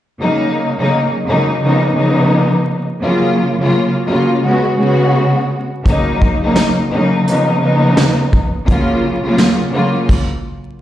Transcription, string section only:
0.19 C#3 F#3 A#3 D#4
0.77 C#3 F#3 A#3 D#4
1.26 C#3 F#3 A#3 D#4
1.62 C#3 F3 A#3 B3 D#4
1.95 C#3 F3 A#3 B3 D#4
3.02 C#3 F#3 A#3 F4
3.60 C#3 F#3 A#3 F4
4.07 C#3 F#3 A#3 F4
4.43 C#3 G#3 B3 F#4
4.77 C#3 G#3 B3 F#4
5.84 C#3 F#3 A#3 D#4
6.42 C#3 F#3 A#3 D#4
6.91 C#3 F#3 A#3 D#4
7.27 C#3 F3 A#3 B3 D#4
7.60 C#3 F3 A#3 B3 D#4
8.66 C#3 F#3 A#3 F4
9.25 C#3 F#3 A#3 F4
9.72 C#3 F#3 A#3 F4

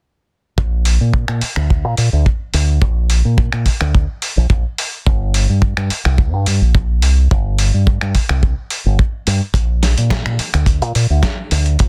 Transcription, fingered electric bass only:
0.58 A#1
1.01 A#2
1.28 A#2
1.42 muted fingered electric bass stroke
1.56 D2
1.85 A#2
1.98 A#2
2.13 D2
2.54 D2
2.82 A#1
3.25 A#2
3.53 A#2
3.81 D2
4.37 A#1
4.50 A#1
5.07 G1
5.49 G2
5.77 G2
5.91 muted fingered electric bass stroke
6.05 C2
6.34 G2
6.47 G2
6.61 A#1
7.03 C2
7.31 G1
7.74 G2
8.02 G2
8.15 muted fingered electric bass stroke
8.30 C2
8.86 G1
9.27 G2
9.54 A#1
9.98 A#2
10.26 A#2
10.39 muted fingered electric bass stroke
10.54 D2
10.82 A#2
10.95 A#2
11.10 D2
11.51 D2
11.80 A#1

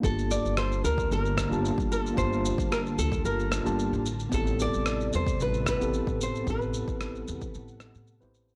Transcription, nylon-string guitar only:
0.04 A4
0.31 D5
0.58 C5
0.84 A#4
1.12 A#4
1.68 A4
1.92 A4
2.18 C5
2.72 A#4
2.99 A4
3.25 A#4
4.34 A4
4.62 D5
5.15 C5
5.42 B4
5.69 B4
6.23 C5
6.50 B4

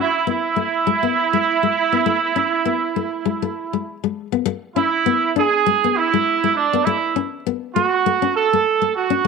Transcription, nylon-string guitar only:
Already playing: C#4
0.27 B3
0.56 A3
0.87 G#3
1.03 B3
1.33 G#3
1.63 G#3
1.92 B3
2.06 A3
2.36 C#4
2.65 B3
2.96 A3
3.25 G#3
3.42 A3
3.73 G#3
4.04 G#3
4.32 B3
4.46 muted nylon-string guitar stroke
4.76 C#4
5.06 B3
5.36 D4
5.66 G#3
5.84 B3
6.14 G#3
6.44 G#3
6.73 B3
6.87 A3
7.16 C#4
7.46 B3
7.76 A3
8.06 A3
8.22 C#4
8.53 A3
8.82 A3
9.10 C#4

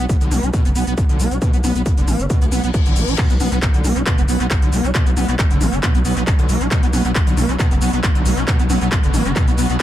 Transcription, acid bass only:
0.09 B1
0.21 D3
0.31 B3
0.43 D4
0.53 B2
0.65 B3
0.76 B3
0.87 B3
0.98 B1
1.09 D3
1.20 B3
1.31 D4
1.42 B2
1.53 B3
1.64 B3
1.75 B3
1.86 B1
1.97 D3
2.08 B3
2.20 D4
2.30 B2
2.42 B3
2.52 B3
2.64 B3
2.74 B1
2.86 D3
2.96 B3
3.08 D4
3.18 B2
3.30 B3
3.40 B3
3.52 B3
3.62 B1
3.74 D3
3.84 B3
3.96 D4
4.06 B2
4.18 B3
4.29 B3
4.40 B3
4.51 B1
4.62 D3
4.73 B3
4.84 D4
4.95 B2
5.06 B3
5.17 B3
5.29 B3
5.39 B1
5.51 D3
5.61 B3
5.73 D4
5.83 B2
5.95 B3
6.05 B3
6.17 B3
6.27 B1
6.39 D3
6.49 B3
6.61 D4
6.71 B2
6.83 B3
6.93 B3
7.05 B3
7.15 B1
7.27 D3
7.37 B3
7.49 D4
7.60 B2
7.71 B3
7.82 B3
7.93 B3
8.04 B1
8.15 D3
8.26 B3
8.37 D4
8.48 B2
8.59 B3
8.70 B3
8.81 B3
8.92 B1
9.03 D3
9.14 B3
9.25 D4
9.36 B2
9.48 B3
9.58 B3
9.70 B3

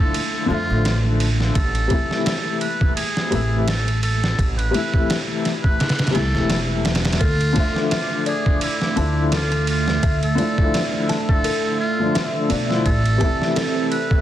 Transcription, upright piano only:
Already playing: D3 F3 A3 E4
0.46 D3 F3
0.51 A3 E5
1.87 C3 E3
1.92 A3 E4
3.30 C3 E3 A3 E4
4.71 C3 E3
4.75 A3 E4
6.11 C3 E3
6.15 A3 E4
7.53 D3 F3
7.57 A3 E5
8.96 D3 F3 A3 E4
10.35 D3 F3
10.40 A3 E4
11.99 D3 F3 A3 D4
12.49 D3 F3 A3 D4
12.68 D3 F3 A3 E4
13.18 C3 E3
13.22 A3 E4

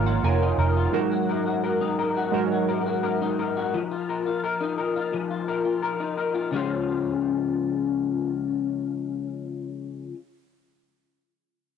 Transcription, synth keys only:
Already playing: A#3 D#4 F4 C#5 F5
0.06 F#5
0.24 G#5
0.92 G#3 D#4 F#4 A#4
2.32 G#3 D#4 F#4 A#4

